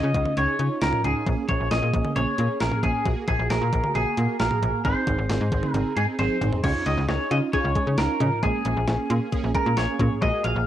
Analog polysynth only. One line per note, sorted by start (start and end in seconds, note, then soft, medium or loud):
0.00 0.11 C#4 loud
0.00 0.11 D#4 medium
0.00 0.11 F4 loud
0.15 0.33 C#4 medium
0.15 0.33 D#4 medium
0.15 0.33 F4 medium
0.37 0.56 C#4 medium
0.37 0.56 D#4 medium
0.37 0.56 G#4 medium
0.59 0.78 C#4 medium
0.59 0.78 D#4 medium
0.59 0.78 F4 medium
0.82 1.00 C#4 medium
0.82 1.01 D#4 medium
0.82 1.01 F4 loud
1.04 1.23 C#4 medium
1.04 1.23 D#4 medium
1.27 1.45 A#3 loud
1.27 1.45 C#4 medium
1.27 1.45 G#4 loud
1.49 1.68 A#3 medium
1.49 1.68 C#4 medium
1.71 1.90 A#3 medium
1.71 1.90 C#4 medium
1.71 1.90 G#4 loud
1.94 2.12 A#3 medium
1.94 2.12 C#4 medium
1.94 2.12 G#4 medium
2.16 2.35 A#3 medium
2.16 2.35 C#4 medium
2.16 2.35 G#4 medium
2.38 2.57 A#3 medium
2.38 2.57 C#4 medium
2.38 2.57 G#4 medium
2.60 2.79 A#3 medium
2.60 2.79 C#4 medium
2.60 2.79 G#4 loud
2.83 3.02 A#3 medium
2.83 3.02 C#4 medium
2.83 3.02 G#4 medium
3.05 3.24 A#3 medium
3.05 3.24 F#4 medium
3.05 3.24 G#4 loud
3.28 3.47 A#3 medium
3.28 3.47 F#4 medium
3.28 3.47 G#4 medium
3.50 3.69 A#3 medium
3.50 3.69 F#4 medium
3.50 3.69 G#4 loud
3.73 3.92 A#3 medium
3.73 3.92 F#4 medium
3.73 3.92 G#4 medium
3.95 4.14 A#3 medium
3.95 4.14 F#4 medium
3.95 4.14 G#4 medium
4.17 4.36 A#3 medium
4.17 4.36 F#4 medium
4.17 4.36 A#4 medium
4.40 4.59 A#3 medium
4.40 4.59 F#4 medium
4.40 4.59 G#4 loud
4.62 4.81 A#3 medium
4.62 4.81 F#4 medium
4.62 4.81 G#4 medium
4.84 5.03 C4 loud
4.84 5.03 D#4 medium
4.84 5.03 G#4 loud
5.07 5.26 C4 medium
5.07 5.26 D#4 medium
5.07 5.26 G#4 medium
5.29 5.48 C4 medium
5.29 5.48 D#4 medium
5.29 5.48 G#4 loud
5.52 5.71 C4 medium
5.52 5.71 D#4 medium
5.52 5.71 G#4 loud
5.74 5.93 C4 medium
5.74 5.93 D#4 medium
5.74 5.93 G#4 loud
5.97 6.16 C4 medium
5.97 6.15 D#4 medium
5.97 6.15 G#4 loud
6.19 6.38 C4 loud
6.19 6.38 D#4 loud
6.19 6.38 G#4 loud
6.41 6.60 C4 medium
6.41 6.60 D#4 medium
6.41 6.60 G#4 loud
6.64 6.83 C#4 medium
6.64 6.83 D#4 medium
6.64 6.83 F4 loud
6.86 7.05 C#4 medium
6.86 7.05 D#4 medium
6.86 7.05 F4 medium
7.08 7.27 C#4 medium
7.08 7.27 D#4 medium
7.08 7.27 G#4 medium
7.31 7.50 C#4 medium
7.31 7.50 D#4 medium
7.31 7.50 F4 medium
7.53 7.72 C#4 loud
7.53 7.72 D#4 medium
7.53 7.72 F4 loud
7.76 7.94 C#4 medium
7.76 7.94 D#4 medium
7.76 7.95 G#4 medium
7.98 8.17 C#4 medium
7.98 8.17 D#4 medium
7.98 8.17 F4 loud
8.20 8.39 C#4 medium
8.20 8.39 D#4 medium
8.20 8.39 F4 medium
8.43 8.62 A#3 loud
8.43 8.62 C#4 medium
8.43 8.62 G#4 loud
8.65 8.84 A#3 medium
8.65 8.84 C#4 medium
8.65 8.84 G#4 medium
8.88 9.07 A#3 medium
8.88 9.07 C#4 medium
8.88 9.07 G#4 medium
9.10 9.29 A#3 medium
9.10 9.29 C#4 medium
9.10 9.29 G#4 loud
9.32 9.51 A#3 loud
9.32 9.51 C#4 loud
9.32 9.51 G#4 loud
9.55 9.74 A#3 medium
9.55 9.74 C#4 medium
9.55 9.74 G#4 medium
9.77 9.96 A#3 medium
9.77 9.96 C#4 medium
9.77 9.96 G#4 loud
10.00 10.18 A#3 medium
10.00 10.18 C#4 medium
10.00 10.18 G#4 medium
10.22 10.41 A#3 loud
10.22 10.41 F#4 medium
10.22 10.41 G#4 loud
10.44 10.63 A#3 medium
10.44 10.63 F#4 medium
10.44 10.63 G#4 medium